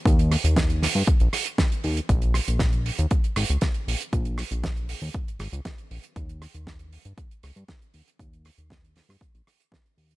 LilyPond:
<<
  \new Staff \with { instrumentName = "Analog synth bass" } { \clef bass \time 4/4 \key bes \dorian \tempo 4 = 118 ees,8 r16 ees,8. r16 g,16 r16 bes,,16 r4 ees,16 r16 | bes,,8 r16 bes,,8. r16 ees,16 r8 aes,,16 des,16 r8 bes,,16 r16 | bes,,8 r16 bes,,8. r16 ees,16 r16 aes,,16 aes,,16 des,16 r8 bes,,16 r16 | ees,8 r16 ees,8. r16 g,16 r8 des,16 g,16 r8 ees,16 r16 |
ees,8 r16 ees,8. r16 g,16 r16 bes,,16 r4 ees,16 r16 | }
  \new DrumStaff \with { instrumentName = "Drums" } \drummode { \time 4/4 <hh bd>16 hh16 <hho ss>16 hh16 <hh bd sn>16 hh16 <hho sn>16 hho16 <hh bd>16 hh16 <hho ss>16 hh16 <hh bd sn>16 hh16 hho16 hh16 | <hh bd>16 hh16 <hho ss>16 hh16 <hh bd sn>16 hh16 hho16 hh16 <hh bd>16 hh16 <hho ss>16 hh16 <hh bd sn>16 hh16 hho16 hh16 | <hh bd>16 hh16 <hho ss>16 hh16 <hh bd sn>16 hh16 hho16 hho16 <hh bd>16 hh16 <hho ss>16 hh16 <hh bd sn>16 hh16 hho16 hh16 | <hh bd>16 hh16 <hho ss>16 hh16 <hh bd sn>16 hh16 hho16 hh16 <hh bd>16 hh16 <hho ss>16 hh16 <hh bd sn>16 hh16 hho16 hh16 |
<hh bd>16 hh16 <hho ss>16 hh16 <hh bd sn>16 hh16 <hho sn>16 <hho ss>16 <hh bd>16 hh16 <hho ss>16 hh16 <hh bd sn>16 hh16 hho16 hh16 | }
>>